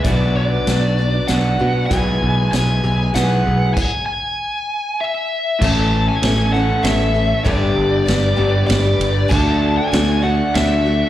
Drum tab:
CC |------|------|x-----|x-----|
RD |------|------|------|--x-x-|
HH |x-x-x-|x-x-x-|------|------|
SD |--o-o-|--o-o-|------|--o-o-|
BD |o-----|o-----|o-----|o-----|

CC |------|x-----|
RD |x-x-xx|--x-x-|
HH |------|------|
SD |--o-o-|--o-o-|
BD |o-----|o-----|